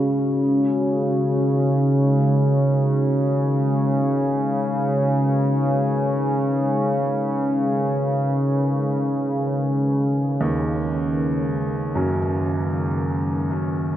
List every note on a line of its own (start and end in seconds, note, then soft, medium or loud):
0.00 13.97 C#3 medium
0.00 13.97 G#3 medium
0.00 2.59 C#4 medium
0.00 13.97 D#4 medium
0.00 13.97 F#4 medium
0.00 0.69 G#4 medium
0.00 0.19 C#5 medium
0.08 13.97 A#4 medium
3.02 13.97 B4 medium
10.41 12.16 D#2 medium
11.95 13.97 F#2 medium